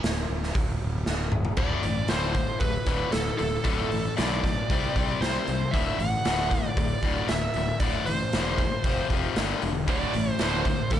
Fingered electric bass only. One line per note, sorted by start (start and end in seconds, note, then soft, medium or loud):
0.04 0.26 D1 medium
0.30 0.52 D1 medium
0.56 0.78 D1 medium
0.82 1.04 D1 medium
1.07 1.30 D1 medium
1.32 1.55 D1 medium
1.57 1.73 D1 medium
1.85 2.01 A1 medium
2.11 2.42 D1 medium
2.61 2.77 D1 medium
2.87 3.03 D1 medium
3.14 3.30 D1 medium
3.41 3.56 D1 medium
3.65 3.81 D1 medium
3.93 4.08 A1 medium
4.19 4.50 B1 medium
4.70 4.86 C2 medium
4.96 5.12 C2 medium
5.21 5.37 C2 medium
5.48 5.63 C2 medium
5.74 5.90 D1 medium
5.99 6.15 A1 medium
6.25 6.57 D1 medium
6.77 6.93 D1 medium
7.03 7.19 D1 medium
7.31 7.46 D1 medium
7.55 7.71 D1 medium
7.80 7.96 D1 medium
8.08 8.23 A1 medium
8.34 8.65 E1 medium
8.84 9.00 F1 medium
9.10 9.26 F1 medium
9.37 9.52 G1 medium
9.63 9.88 E1 medium
9.88 10.04 D1 medium
10.15 10.30 A1 medium
10.41 10.72 D1 medium
10.92 11.00 D1 medium